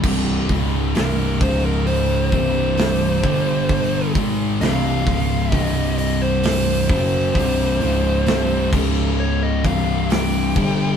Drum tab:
CC |x-------|--------|---x---x|
HH |-ooooooo|oooooooo|ooo--oo-|
SD |--o---o-|--o---o-|--o---o-|
BD |oo-o-o-o|oo-oo--o|o--o-o-o|